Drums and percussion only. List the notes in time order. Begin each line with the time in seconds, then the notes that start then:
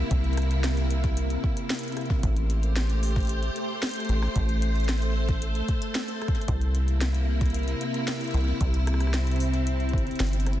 0.11 kick, closed hi-hat
0.24 closed hi-hat
0.33 closed hi-hat
0.38 cross-stick, closed hi-hat
0.42 closed hi-hat
0.51 closed hi-hat
0.64 snare, closed hi-hat
0.77 closed hi-hat
0.91 closed hi-hat
1.04 kick, closed hi-hat
1.17 closed hi-hat
1.30 closed hi-hat
1.44 kick
1.57 closed hi-hat
1.70 snare, closed hi-hat
1.75 closed hi-hat
1.79 closed hi-hat
1.83 closed hi-hat
1.88 closed hi-hat
1.92 closed hi-hat
1.97 cross-stick, closed hi-hat
2.01 closed hi-hat
2.06 closed hi-hat
2.10 kick
2.23 kick, closed hi-hat
2.37 closed hi-hat
2.50 closed hi-hat
2.63 closed hi-hat
2.76 snare, closed hi-hat
2.90 closed hi-hat
3.03 open hi-hat
3.16 kick, closed hi-hat
3.18 closed hi-hat
3.21 closed hi-hat
3.23 closed hi-hat
3.25 closed hi-hat
3.27 closed hi-hat
3.29 closed hi-hat
3.43 closed hi-hat
3.56 closed hi-hat
3.83 snare, closed hi-hat
3.85 closed hi-hat
3.87 closed hi-hat
3.89 closed hi-hat
3.91 closed hi-hat
3.94 closed hi-hat
3.96 closed hi-hat
4.00 closed hi-hat
4.05 closed hi-hat
4.09 closed hi-hat
4.22 cross-stick
4.36 kick, closed hi-hat
4.49 closed hi-hat
4.62 closed hi-hat
4.76 closed hi-hat
4.80 closed hi-hat
4.84 closed hi-hat
4.89 snare, closed hi-hat
4.93 closed hi-hat
4.98 closed hi-hat
5.02 closed hi-hat
5.29 kick, closed hi-hat
5.42 closed hi-hat
5.55 closed hi-hat
5.68 kick, closed hi-hat
5.82 closed hi-hat
5.95 snare, closed hi-hat
6.08 closed hi-hat
6.22 cross-stick, closed hi-hat
6.28 kick, closed hi-hat
6.35 closed hi-hat
6.42 closed hi-hat
6.48 kick, closed hi-hat
6.61 closed hi-hat
6.75 closed hi-hat
6.88 closed hi-hat
7.01 snare, closed hi-hat
7.15 closed hi-hat
7.41 kick, closed hi-hat
7.46 closed hi-hat
7.50 closed hi-hat
7.54 closed hi-hat
7.59 closed hi-hat
7.63 closed hi-hat
7.68 closed hi-hat
7.81 closed hi-hat
7.94 closed hi-hat
8.08 snare, closed hi-hat
8.21 closed hi-hat
8.24 closed hi-hat
8.28 closed hi-hat
8.31 closed hi-hat
8.34 closed hi-hat
8.38 closed hi-hat
8.41 closed hi-hat
8.61 kick, closed hi-hat
8.74 closed hi-hat
8.87 cross-stick, closed hi-hat
8.94 cross-stick
9.01 cross-stick, closed hi-hat
9.07 cross-stick
9.14 snare, closed hi-hat
9.27 closed hi-hat
9.32 closed hi-hat
9.36 closed hi-hat
9.40 open hi-hat
9.54 closed hi-hat
9.67 closed hi-hat
9.80 closed hi-hat
9.89 closed hi-hat
9.93 kick
9.98 closed hi-hat
10.07 closed hi-hat
10.11 closed hi-hat
10.16 closed hi-hat
10.20 snare, closed hi-hat
10.24 closed hi-hat
10.27 closed hi-hat
10.29 closed hi-hat
10.33 closed hi-hat
10.40 closed hi-hat
10.47 cross-stick, closed hi-hat
10.53 closed hi-hat